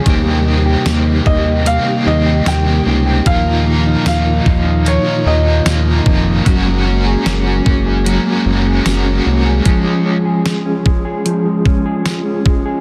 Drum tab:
HH |x-x-x-x-|x-x-x-x-|x-x-x-x-|x-x-x-x-|
TB |--x---x-|--x---x-|--x---x-|--x---x-|
SD |--o---o-|--o---o-|--o---o-|--o---o-|
BD |o--o----|o--o---o|o--o----|o--o-o-o|